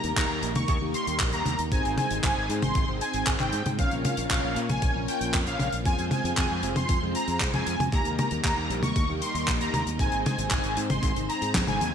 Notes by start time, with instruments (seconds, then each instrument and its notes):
Already playing: string machine G3 A#3 D#4 A#4
0.04 fingered electric bass D#2, analog polysynth A#3 D#4 G4 A#4, closed hi-hat
0.17 fingered electric bass D#2, analog synth lead A#5, kick, clap, closed hi-hat
0.30 fingered electric bass D#2
0.43 fingered electric bass A#1, analog polysynth A#3 D#4 G4 A#4, closed hi-hat
0.55 fingered electric bass D#2, analog synth lead C#6, closed hi-hat, high tom
0.68 fingered electric bass D#2, kick, closed hi-hat
0.81 fingered electric bass D#2, analog polysynth A#3 D#4 G4 A#4
0.94 analog synth lead C6, closed hi-hat
1.07 fingered electric bass D#2, closed hi-hat
1.20 fingered electric bass A#1, kick, clap, closed hi-hat
1.32 fingered electric bass D#2, analog polysynth A#3 D#4 G4 A#4, analog synth lead A#5, closed hi-hat
1.46 fingered electric bass D#2, closed hi-hat, high tom
1.59 fingered electric bass D#2, closed hi-hat
1.72 fingered electric bass G#1, string machine G#3 C4 C5, analog polysynth C4 D#4 G#4 C5, analog synth lead G#5, kick, closed hi-hat
1.85 fingered electric bass G#1, closed hi-hat
1.98 analog synth lead G#5, closed hi-hat, high tom
2.10 fingered electric bass G#1, analog polysynth C4 D#4 G#4 C5, closed hi-hat
2.23 fingered electric bass G#1, analog synth lead G#5, kick, clap, closed hi-hat
2.37 fingered electric bass G#1
2.49 fingered electric bass G#2, analog polysynth C4 D#4 G#4 C5, closed hi-hat
2.62 fingered electric bass G#1, analog synth lead C6, closed hi-hat, high tom
2.75 fingered electric bass G#1, kick, closed hi-hat
2.88 fingered electric bass G#1, analog polysynth C4 D#4 G#4 C5
3.01 analog synth lead G#5, closed hi-hat
3.14 fingered electric bass G#1, closed hi-hat
3.27 fingered electric bass G#1, kick, clap, closed hi-hat
3.40 fingered electric bass G#1, analog polysynth C4 D#4 G#4 C5, analog synth lead G5, clap, closed hi-hat, high tom
3.52 fingered electric bass G#2, closed hi-hat
3.66 fingered electric bass G#2, closed hi-hat, high tom
3.79 fingered electric bass A#1, string machine A#3 C#4 F4 C#5, analog polysynth C#4 F4 A#4 C#5, analog synth lead F5, kick, closed hi-hat
3.91 fingered electric bass A#1, closed hi-hat
4.05 analog synth lead F5, closed hi-hat, high tom
4.17 fingered electric bass A#1, analog polysynth C#4 F4 A#4 C#5, closed hi-hat
4.30 fingered electric bass A#1, analog synth lead F5, kick, clap, closed hi-hat
4.43 fingered electric bass A#1
4.56 fingered electric bass A#2, analog polysynth C#4 F4 A#4 C#5, closed hi-hat
4.69 fingered electric bass A#1, analog synth lead G#5, closed hi-hat, high tom
4.82 fingered electric bass A#1, kick, closed hi-hat
4.95 fingered electric bass A#1, analog polysynth C#4 F4 A#4 C#5
5.08 analog synth lead G5, closed hi-hat
5.21 fingered electric bass A#1, closed hi-hat
5.33 fingered electric bass F2, kick, clap, closed hi-hat
5.47 fingered electric bass A#1, analog polysynth C#4 F4 A#4 C#5, analog synth lead F5, closed hi-hat
5.59 fingered electric bass A#1, closed hi-hat, high tom
5.72 fingered electric bass A#1, closed hi-hat
5.85 fingered electric bass F2, string machine G#3 C4 C5, analog polysynth C4 F4 G#4 C5, analog synth lead G#5, kick, closed hi-hat
5.98 fingered electric bass F2, closed hi-hat
6.11 analog synth lead G#5, closed hi-hat, high tom
6.24 fingered electric bass F2, analog polysynth C4 F4 G#4 C5, closed hi-hat
6.36 fingered electric bass F2, analog synth lead G#5, kick, clap, closed hi-hat
6.50 fingered electric bass F2
6.63 fingered electric bass F1, analog polysynth C4 F4 G#4 C5, closed hi-hat
6.76 fingered electric bass F2, analog synth lead C6, closed hi-hat, high tom
6.89 fingered electric bass F2, kick, closed hi-hat
7.02 fingered electric bass F2, analog polysynth C4 F4 G#4 C5
7.15 analog synth lead A#5, closed hi-hat
7.28 fingered electric bass F2, closed hi-hat
7.40 fingered electric bass C2, kick, clap, closed hi-hat
7.53 fingered electric bass F2, analog polysynth C4 F4 G#4 C5, analog synth lead G#5, closed hi-hat, high tom
7.67 fingered electric bass F2, closed hi-hat
7.80 fingered electric bass F2, closed hi-hat, high tom
7.92 fingered electric bass D#2, string machine G3 A#3 D#4 A#4, analog polysynth A#3 D#4 G4 A#4, analog synth lead A#5, kick, closed hi-hat
8.05 fingered electric bass D#2, closed hi-hat
8.19 analog synth lead A#5, closed hi-hat, high tom
8.31 fingered electric bass D#2, analog polysynth A#3 D#4 G4 A#4, closed hi-hat
8.44 fingered electric bass D#2, analog synth lead A#5, kick, clap, closed hi-hat
8.57 fingered electric bass D#2
8.70 fingered electric bass A#1, analog polysynth A#3 D#4 G4 A#4, closed hi-hat
8.83 fingered electric bass D#2, analog synth lead C#6, closed hi-hat, high tom
8.96 fingered electric bass D#2, kick, closed hi-hat
9.09 fingered electric bass D#2, analog polysynth A#3 D#4 G4 A#4
9.22 analog synth lead C6, closed hi-hat
9.35 fingered electric bass D#2, closed hi-hat
9.48 fingered electric bass A#1, kick, clap, closed hi-hat
9.60 fingered electric bass D#2, analog polysynth A#3 D#4 G4 A#4, analog synth lead A#5, closed hi-hat
9.73 fingered electric bass D#2, closed hi-hat, high tom
9.86 fingered electric bass D#2, closed hi-hat
9.99 fingered electric bass G#1, string machine G#3 C4 C5, analog polysynth C4 D#4 G#4 C5, analog synth lead G#5, kick, closed hi-hat
10.12 fingered electric bass G#1, closed hi-hat
10.25 analog synth lead G#5, closed hi-hat, high tom
10.38 fingered electric bass G#1, analog polysynth C4 D#4 G#4 C5, closed hi-hat
10.51 fingered electric bass G#1, analog synth lead G#5, kick, clap, closed hi-hat
10.64 fingered electric bass G#1, closed hi-hat
10.77 fingered electric bass G#2, analog polysynth C4 D#4 G#4 C5, closed hi-hat
10.90 fingered electric bass G#1, analog synth lead C6, closed hi-hat, high tom
11.03 fingered electric bass G#1, kick, closed hi-hat
11.16 fingered electric bass G#1, analog polysynth C4 D#4 G#4 C5, closed hi-hat
11.29 analog synth lead A#5, closed hi-hat
11.42 fingered electric bass G#2, closed hi-hat
11.54 fingered electric bass G#1, kick, snare, clap, closed hi-hat
11.67 fingered electric bass G#1, analog polysynth C4 D#4 G#4 C5, analog synth lead G#5, closed hi-hat, high tom
11.80 fingered electric bass D#2, closed hi-hat